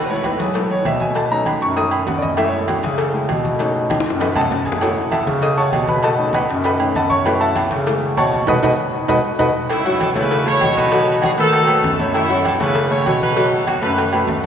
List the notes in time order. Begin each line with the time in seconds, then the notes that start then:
0.06 G#3 C5, high conga, maracas
0.10 A3 E4 C#5
0.24 B4, cowbell, high conga, low agogo, maracas
0.39 F#3 G#4, cowbell, high conga, maracas
0.54 G#3 A3 E4 A4, cowbell, high conga, low agogo, maracas
0.70 C#5, high conga, maracas
0.85 B2 E5, cowbell, high conga, low timbale, low agogo, maracas
1.00 G#5, high conga, maracas
1.15 A5, cowbell, high conga, low agogo, maracas
1.31 A3 C#4 D#4 A#5, high conga, maracas
1.46 B5, cowbell, high conga, low agogo, maracas
1.61 F#2 C#6, cowbell, high conga, maracas
1.76 A3 C#4 D#4 D#6, cowbell, high conga, low agogo, maracas
1.91 B5, high conga, low agogo, maracas
2.07 F#2 F#5, cowbell, high conga, low timbale, maracas
2.18 D5
2.22 D#5, high conga, maracas
2.37 G#3 A3 E4 E5, cowbell, high conga, low agogo, maracas
2.48 C#5
2.53 high conga, maracas
2.58 A4
2.68 F#4, cowbell, high conga, low agogo, maracas
2.83 C#3 G#4, cowbell, high conga, maracas
2.98 A4, cowbell, high conga, low agogo, maracas
3.13 G#3 A3 E4, high conga, maracas
3.29 B2, cowbell, high conga, low timbale, low agogo, maracas
3.45 high conga, maracas
3.59 A3 C#4 D#4, cowbell, high conga, low agogo, maracas
3.75 high conga, maracas
3.90 cowbell, high bongo, high conga, low agogo, maracas
4.00 high bongo
4.05 F#2, cowbell, maracas
4.10 high bongo
4.20 B4 D#5 F#5 B5, cowbell, low bongo, low agogo, maracas
4.36 A4 D#5 F#5 A5, low conga, low agogo, maracas
4.41 low bongo
4.51 F#2, cowbell, low conga, low timbale, maracas
4.65 G#4 G#5, low conga, maracas
4.72 low bongo
4.81 A3 E4 F#4 G#4 A4 C#5 F#5, cowbell, high conga, low agogo, maracas
4.97 high conga, maracas
5.11 A4 E5 F#5 A5, cowbell, high conga, low agogo, maracas
5.27 C#3, cowbell, high conga, maracas
5.41 D#5 D#6, cowbell, high conga, low agogo, maracas
5.57 C#5 F#5 A5 C#6, high conga, maracas
5.72 B2, cowbell, high conga, low timbale, low agogo, maracas
5.87 B4 B5, high conga, maracas
6.02 A4 D#5 F#5 A5, cowbell, high conga, low agogo, maracas
6.18 A3 C#4 D#4, high conga, maracas
6.33 B4 D#5 F#5 B5, cowbell, high conga, low agogo, maracas
6.48 F#2, cowbell, high conga, maracas
6.64 B4 D#5 F#5 B5, cowbell, high conga, low agogo, maracas
6.80 A3 C#4 D#4, high conga, low agogo
6.95 F#2 A4 D#5 F#5 A5, cowbell, high conga, maracas
7.10 C#5 C#6, high conga, maracas
7.25 F#3 A3 E4 B4 B5, cowbell, high conga, low agogo, maracas
7.40 A4 E5 F#5 A5, high conga, maracas
7.56 cowbell, high conga, low agogo, maracas
7.71 C#3, cowbell, high conga, maracas
7.86 G#3 A3 E4, cowbell, high conga, low agogo, maracas
8.02 high conga, maracas
8.17 B2 C#5 F#5 A5 C#6, cowbell, high conga, low timbale, low agogo, maracas
8.33 high conga, maracas
8.47 B2 B4 D#5 F#5, cowbell, low conga, high timbale, maracas
8.62 B2 B4 D#5 F#5, cowbell, low conga, high timbale, maracas
9.08 B2 B4 D#5 F#5, cowbell, low conga, high timbale, maracas
9.39 B2 B4 D#5 F#5, cowbell, low conga, high timbale, maracas
9.70 A3 C#4 E4, cowbell, high conga, low agogo, maracas
9.85 F#3 F#4 F#5, high conga, maracas
10.00 A4, cowbell, high conga, low agogo, maracas
10.15 C#3 A3 E4 A4 B4 C#5, cowbell, high conga, maracas
10.31 cowbell, high conga, low agogo, maracas
10.45 A3 E4 A4 C#5, high conga, maracas
10.61 B2 F#3 F#4 F#5, cowbell, high conga, low agogo, maracas
10.77 D#4 F#4 B4, high conga, maracas
10.92 F#3 F#4 F#5, cowbell, high conga, low agogo, maracas
11.07 B4, high conga, maracas
11.22 F#3 F#4 G#4 F#5, cowbell, high conga, low agogo, maracas
11.37 D#3 A3 D#4 F#4 A4 B4, cowbell, high conga, maracas
11.53 cowbell, high conga, low agogo, maracas
11.67 A3 A4 B4, high conga, low agogo, maracas
11.83 F#2, cowbell, high conga, maracas
11.99 A3 A4 C#5, high conga, maracas
12.14 A3 C#4 E4, cowbell, high conga, low agogo, maracas
12.29 F#3 F#4 F#5, high conga, maracas
12.45 A4, cowbell, high conga, low agogo, maracas
12.60 C#3 A3 E4 A4 B4 C#5, cowbell, high conga, maracas
12.74 cowbell, high conga, low agogo, maracas
12.90 A3 A4 C#5, high conga, maracas
13.06 B2 F#3 F#4 C#5 F#5, cowbell, high conga, low agogo, maracas
13.21 D#4 F#4 B4, high conga, maracas
13.36 F#3 F#4 F#5, cowbell, high conga, low agogo, maracas
13.52 A4, high conga, maracas
13.67 F#3 F#4 F#5, cowbell, high conga, low agogo, maracas
13.81 F#2 A3 D#4 F#4 A4 B4, cowbell, high conga, maracas
13.97 cowbell, high conga, low agogo, maracas
14.13 A3 A4 B4, high conga, low agogo, maracas
14.27 F#2, cowbell, high conga, low timbale, maracas